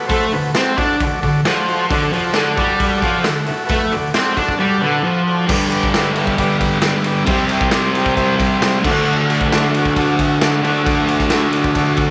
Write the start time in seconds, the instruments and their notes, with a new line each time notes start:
0.06 distorted electric guitar A3, transistor combo organ F#4 A4 C5, open hi-hat
0.10 kick
0.32 distorted electric guitar D3, transistor combo organ F#4 A4 B4, open hi-hat
0.54 distorted electric guitar C4, transistor combo organ F#4 A4 C5, snare, open hi-hat
0.77 distorted electric guitar D4, transistor combo organ F#4 A4 D5, kick, open hi-hat
1.00 distorted electric guitar D3, transistor combo organ F#4 A4 D5, kick, open hi-hat
1.22 distorted electric guitar D3, transistor combo organ F#4 A4 D5, kick, open hi-hat
1.45 distorted electric guitar F3, transistor combo organ F#4 A4 D5, snare, open hi-hat
1.68 transistor combo organ F#4 A4 C5, open hi-hat
1.89 distorted electric guitar D3, transistor combo organ F#4 A4 D5, kick, open hi-hat
2.13 distorted electric guitar F3, transistor combo organ F#4 A4 D5, open hi-hat
2.32 distorted electric guitar D3, transistor combo organ F#4 A4 D5, snare, open hi-hat
2.56 distorted electric guitar G3, transistor combo organ F#4 A4 D5, kick, open hi-hat
2.76 transistor combo organ F#4 A4 D5, kick, open hi-hat
2.97 transistor combo organ F#4 A4 D5
3.02 distorted electric guitar F3, kick, open hi-hat
3.19 transistor combo organ F#4 A4 E5
3.24 distorted electric guitar D3, snare, open hi-hat
3.44 transistor combo organ F#4 A4 E5, open hi-hat
3.48 muted distorted electric guitar stroke
3.64 transistor combo organ F#4 A4 B4
3.69 distorted electric guitar A3, kick, open hi-hat
3.90 distorted electric guitar D3, transistor combo organ F#4 A4 D5, open hi-hat
4.14 distorted electric guitar C4, transistor combo organ F#4 A4 D5, snare, open hi-hat
4.36 distorted electric guitar D4, transistor combo organ F#4 A4 D5, kick, open hi-hat
4.49 kick
4.59 distorted electric guitar G3, transistor combo organ F#4 A4 D5
4.79 distorted electric guitar D3, transistor combo organ F#4 A4 B4
5.03 distorted electric guitar F3, transistor combo organ F#4 A4 C5
5.27 transistor combo organ F#4 A4 D5
5.47 distorted electric guitar G2 D3, transistor combo organ G4 B4 D5, kick, crash
5.53 distorted electric guitar G3
5.70 transistor combo organ G4 B4 D5, ride
5.83 kick
5.94 transistor combo organ G4 B4 E5, snare, ride
6.16 transistor combo organ G4 B4, ride
6.20 transistor combo organ E5
6.27 kick
6.38 transistor combo organ G4 B4 D5, kick, ride
6.60 transistor combo organ G4 B4 D5, kick, ride
6.82 transistor combo organ G4 B4, snare, ride
6.87 transistor combo organ D5
7.04 transistor combo organ G4 B4 D5, ride
7.25 distorted electric guitar C3 G3, transistor combo organ G4 C5 E5, kick, ride
7.31 distorted electric guitar C4
7.49 transistor combo organ G4 C5, ride
7.53 transistor combo organ G5
7.61 kick
7.71 transistor combo organ G4 C5 D5, snare, ride
7.95 transistor combo organ G4 C5 G5, ride
8.06 kick
8.17 transistor combo organ G4 C5 E5, kick, ride
8.38 transistor combo organ G4 C5 E5, kick, ride
8.59 transistor combo organ G4 C5 E5, snare, ride
8.83 distorted electric guitar D3 A3, transistor combo organ F#4 A4 D5, kick, crash
8.89 distorted electric guitar D4
9.30 transistor combo organ F#4 A4 D5, ride
9.41 kick
9.52 transistor combo organ F#4 A4 D5, snare, ride
9.74 transistor combo organ F#4 A4 D5, ride
9.85 kick
9.96 transistor combo organ F#4 A4 D5, kick, ride
10.19 transistor combo organ F#4 A4 E5, kick, ride
10.41 transistor combo organ F#4 A4 D5, snare, ride
10.62 distorted electric guitar D3 A3, transistor combo organ F#4 A4 D5, ride
10.67 distorted electric guitar D4
10.83 transistor combo organ F#4 A4 D5, kick, ride
11.07 transistor combo organ F#4 A4 D5, ride
11.19 kick, snare
11.30 transistor combo organ F#4 A4 E5, snare, ride
11.51 transistor combo organ F#4 A4 D5, ride
11.64 kick
11.74 transistor combo organ F#4 A4 D5, kick, ride
11.96 transistor combo organ F#4 A4 D5, kick, ride